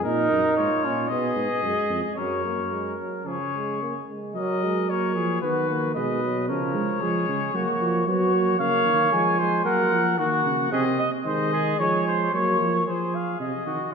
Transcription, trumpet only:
0.04 0.56 A#4 medium
0.57 1.09 C#5 medium
1.08 2.15 D#5 medium
2.16 2.95 C#5 medium
3.25 4.03 C#5 medium
4.35 4.91 D#5 medium
4.90 5.41 C#5 medium
5.42 5.94 B4 medium
5.95 6.47 D#5 medium
6.49 8.03 C#5 medium
8.07 8.58 C#5 medium
8.59 9.11 F5 medium
9.12 9.64 G#5 medium
9.66 10.18 F#5 medium
10.19 10.71 F#5 medium
10.72 11.06 D#5 medium
11.25 11.81 D#5 medium
11.80 12.33 C#5 medium
12.34 12.86 C#5 medium
12.87 13.17 C5 medium
13.15 13.40 F5 medium
13.41 13.92 D#5 medium

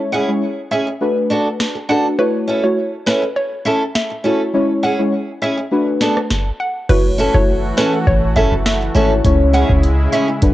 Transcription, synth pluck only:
0.13 0.24 F#5 medium
0.72 0.82 E5 medium
1.89 2.00 F#5 medium
2.19 2.30 B4 loud
2.64 2.84 C#5 medium
3.07 3.27 B4 medium
3.36 3.47 C#5 medium
3.66 3.77 E5 medium
3.95 4.37 E5 medium
4.83 4.94 F#5 medium
5.42 5.53 E5 medium
6.60 6.71 F#5 medium
6.89 7.00 B4 loud
7.34 7.55 C#5 medium
7.78 7.98 B4 medium
8.07 8.18 C#5 medium
8.36 8.47 E5 medium
8.66 9.08 E5 medium
9.54 9.65 F#5 medium
10.13 10.24 E5 medium

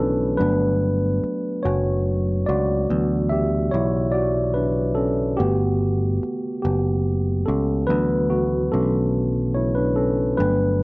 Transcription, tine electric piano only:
0.00 0.40 E3 soft
0.00 0.38 F#3 soft
0.00 0.39 A3 medium
0.00 0.39 B3 soft
0.00 0.40 C#4 medium
0.00 0.40 D4 medium
0.00 0.40 E4 medium
0.00 0.40 F#4 medium
0.00 0.40 A4 medium
0.00 0.38 B4 medium
0.00 0.40 C#5 medium
0.38 2.84 F#3 medium
0.38 2.85 A3 soft
0.38 2.85 B3 medium
0.38 1.60 D4 medium
0.38 1.67 B4 medium
1.63 2.44 F#4 medium
1.63 2.49 C#5 medium
2.46 3.27 F#4 medium
2.46 3.26 D5 medium
2.89 3.44 E3 medium
2.89 3.44 F#3 soft
2.89 3.45 B3 medium
3.29 3.70 G4 medium
3.29 3.68 E5 medium
3.71 4.11 E4 medium
3.71 4.14 C#5 medium
4.12 4.53 F#4 medium
4.12 4.56 D5 medium
4.54 4.94 D4 medium
4.54 4.93 B4 medium
4.95 5.16 C#4 medium
4.95 5.14 A4 medium
5.37 5.94 A3 soft
5.37 6.60 B3 medium
5.37 5.93 F#4 medium
5.37 6.61 G4 medium
6.62 7.43 B3 soft
6.62 7.42 G4 medium
7.46 7.86 C#4 medium
7.46 7.85 A4 medium
7.87 10.34 E3 soft
7.87 10.34 F#3 soft
7.87 10.34 B3 medium
7.87 8.27 D4 medium
7.87 8.31 B4 loud
8.30 8.70 A3 medium
8.30 8.73 F#4 medium
8.72 9.52 C#4 medium
8.72 9.51 A4 medium
9.55 9.75 E4 medium
9.55 9.74 C#5 medium
9.75 9.96 D4 medium
9.75 9.97 B4 medium
9.96 10.36 C#4 medium
9.96 10.35 A4 medium
10.38 10.83 F#3 medium
10.38 10.83 A3 soft
10.38 10.83 B3 medium
10.38 10.83 D4 medium
10.38 10.83 B4 medium

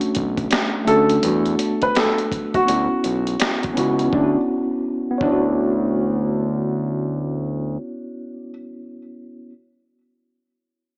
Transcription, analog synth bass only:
0.02 0.07 B1 soft
0.17 0.48 B1 loud
0.87 1.19 D2 loud
1.24 1.56 E2 loud
2.68 2.88 D2 loud
2.91 2.96 B1 soft
3.04 3.36 B1 loud
3.77 4.09 C#2 loud
4.13 4.36 D2 loud
5.21 7.78 D2 loud

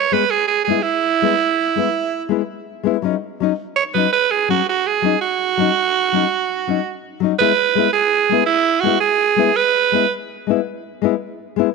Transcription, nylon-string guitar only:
0.12 0.22 G#3 medium
0.12 0.23 B3 medium
0.12 muted nylon-string guitar stroke medium
0.67 0.78 G#3 medium
0.67 0.79 B3 medium
0.67 0.79 E4 medium
1.22 1.32 G#3 medium
1.22 1.33 B3 medium
1.22 1.34 E4 medium
1.75 1.86 G#3 medium
1.75 1.87 B3 medium
1.75 1.88 E4 medium
2.29 2.40 G#3 medium
2.29 2.41 B3 medium
2.29 2.42 E4 medium
2.83 2.95 G#3 medium
2.83 2.96 B3 medium
2.83 2.96 E4 medium
3.02 3.13 F#3 medium
3.02 3.15 C#4 medium
3.02 3.15 D#4 medium
3.40 3.51 F#3 medium
3.40 3.51 C#4 medium
3.40 3.52 D#4 medium
3.94 4.05 F#3 medium
3.94 4.06 C#4 medium
3.94 4.07 D#4 medium
4.49 4.59 F#3 medium
4.49 4.60 C#4 medium
4.49 muted nylon-string guitar stroke medium
5.02 5.13 F#3 medium
5.02 5.15 C#4 medium
5.02 5.15 D#4 medium
5.57 5.68 F#3 medium
5.57 5.70 C#4 medium
5.57 5.70 D#4 medium
6.12 6.23 F#3 medium
6.12 6.24 C#4 medium
6.12 6.25 D#4 medium
6.67 6.78 F#3 medium
6.67 6.78 C#4 medium
6.67 6.79 D#4 medium
7.20 7.32 F#3 medium
7.20 7.33 C#4 medium
7.20 7.33 D#4 medium
7.40 7.51 G#3 medium
7.40 7.51 B3 medium
7.40 7.51 E4 medium
7.75 7.86 G#3 medium
7.75 7.88 B3 medium
7.75 7.88 E4 medium
8.29 8.41 G#3 medium
8.29 8.42 B3 medium
8.29 8.42 E4 medium
8.83 8.95 G#3 medium
8.83 8.95 B3 medium
8.83 8.96 E4 medium
9.36 9.48 G#3 medium
9.36 9.49 B3 medium
9.36 9.50 E4 medium
9.92 10.03 G#3 medium
9.92 10.04 B3 medium
9.92 10.05 E4 medium
10.47 10.58 G#3 medium
10.47 10.59 B3 medium
10.47 10.60 E4 medium
11.02 11.13 G#3 medium
11.02 11.14 B3 medium
11.02 11.14 E4 medium
11.56 11.67 G#3 medium
11.56 11.68 B3 medium
11.56 11.69 E4 medium

